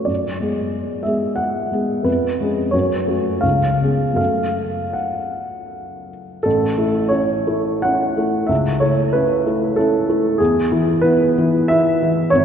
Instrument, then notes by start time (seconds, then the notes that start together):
grand piano
Already playing: F#2 A3 C#4 F#4 A4 B4 C#5
0.05 F#2 D5
0.40 G#3 B3 G#4
1.03 G#3 B3 G#4 E5
1.36 F#5
1.72 G#3 B3 G#4
2.03 F2 B4
2.40 G#3 C#4 G#4
2.71 F#2 C#5
3.07 A3 C#4 F#4
3.41 C#2 F5
3.81 B3 C#4 G#4
4.13 F#2 A3 C#4 A4 F5
4.93 F#5
6.43 A1 A4
6.78 A3 E4
7.09 C#4 E4 C#5
7.47 A3 E4
7.82 C#4 E4 F#5
8.17 A3 E4
8.47 C#2 E5
8.80 A3 E4 C#5
9.13 C#4 E4 B4
9.46 A3 E4
9.76 C#4 E4 A4
10.09 A3 E4
10.38 E2 G#4
10.72 E3 E4
11.02 B3 E4 B4
11.38 E3 E4
11.68 B3 E4 E5
12.02 E3 E4
12.30 G#1 C#5